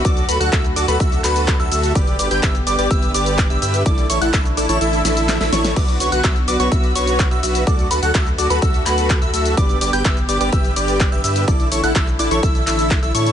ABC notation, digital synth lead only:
X:1
M:4/4
L:1/16
Q:1/4=126
K:D
V:1 name="Digital synth lead"
d'2 b f' e' z d' b e'2 b3 e' e'2 | d'2 d' g' e' z d' d' e'2 d'3 e' e'2 | d'2 c' f' e' z d' c' e'2 e'3 e' c'2 | d'2 c' f' e' z d' c' e'2 c'3 e' e'2 |
d'2 b f' e' z d' b e'2 b3 e' e'2 | d'2 d' g' e' z d' d' e'2 d'3 e' e'2 | d'2 c' f' e' z d' c' e'2 e'3 e' c'2 |]